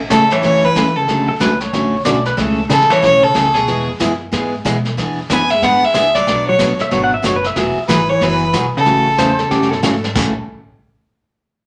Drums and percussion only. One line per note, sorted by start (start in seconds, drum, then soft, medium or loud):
0.10 kick soft
0.10 snare medium
0.10 hi-hat pedal medium
0.30 snare soft
0.43 brush sweep soft
0.43 kick soft
0.43 snare soft
0.76 kick soft
0.76 snare medium
0.76 hi-hat pedal medium
1.08 brush sweep medium
1.08 kick soft
1.08 snare soft
1.40 kick soft
1.40 snare medium
1.40 hi-hat pedal medium
1.60 snare soft
1.73 brush sweep medium
1.73 kick soft
1.73 snare soft
2.05 kick soft
2.05 snare medium
2.05 hi-hat pedal medium
2.25 snare soft
2.38 brush sweep medium
2.38 kick soft
2.38 snare soft
2.70 kick soft
2.70 snare medium
2.70 hi-hat pedal medium
2.81 snare soft
2.90 snare soft
2.92 snare soft
3.03 brush sweep medium
3.03 kick soft
3.03 snare soft
3.35 kick soft
3.35 snare medium
3.35 hi-hat pedal medium
3.55 snare soft
3.68 brush sweep medium
3.68 kick soft
3.68 snare soft
4.00 kick soft
4.00 snare medium
4.00 hi-hat pedal medium
4.33 brush sweep soft
4.33 kick soft
4.33 snare soft
4.65 kick soft
4.65 snare medium
4.65 hi-hat pedal medium
4.85 snare soft
4.98 brush sweep medium
4.98 kick soft
4.98 snare soft
5.30 kick soft
5.30 snare medium
5.30 hi-hat pedal medium
5.50 snare soft
5.62 brush sweep medium
5.62 kick soft
5.62 snare soft
5.94 kick soft
5.94 snare medium
5.94 hi-hat pedal medium
6.15 snare soft
6.27 brush sweep medium
6.27 kick soft
6.27 snare medium
6.59 kick soft
6.59 snare medium
6.59 hi-hat pedal medium
6.79 snare soft
6.91 brush sweep medium
6.91 kick soft
6.91 snare soft
7.24 kick soft
7.24 snare medium
7.24 hi-hat pedal medium
7.44 snare soft
7.56 brush sweep soft
7.56 kick soft
7.56 snare soft
7.89 kick soft
7.89 snare medium
7.89 hi-hat pedal medium
8.21 brush sweep medium
8.21 kick soft
8.21 snare soft
8.53 kick soft
8.53 snare medium
8.53 hi-hat pedal medium
8.86 brush sweep medium
8.86 kick soft
8.86 snare soft
9.18 kick soft
9.18 snare medium
9.18 hi-hat pedal medium
9.39 snare soft
9.51 brush sweep soft
9.51 kick soft
9.51 snare soft
9.62 snare soft
9.73 snare soft
9.83 kick soft
9.83 snare medium
9.83 hi-hat pedal medium
10.04 snare soft
10.15 kick medium
10.15 snare medium
10.15 crash medium